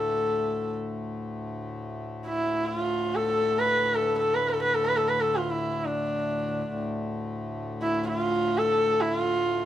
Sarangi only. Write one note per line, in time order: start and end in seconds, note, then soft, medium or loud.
0.00 0.74 A4 medium
2.26 2.66 E4 medium
2.66 2.78 E4 medium
2.78 3.17 F4 medium
3.15 3.60 A4 medium
3.59 3.97 B4 medium
3.95 4.18 A4 medium
4.19 4.36 A4 medium
4.35 4.51 B4 medium
4.49 4.62 A4 medium
4.63 4.76 B4 medium
4.74 4.86 A4 medium
4.85 4.98 B4 medium
4.97 5.10 A4 medium
5.08 5.23 B4 medium
5.21 5.38 A4 medium
5.36 5.52 F4 medium
5.50 5.87 E4 medium
5.86 6.83 D4 medium
7.82 8.05 E4 medium
8.08 8.19 E4 medium
8.19 8.59 F4 medium
8.57 9.02 A4 medium
9.00 9.17 E4 medium
9.17 9.65 F4 medium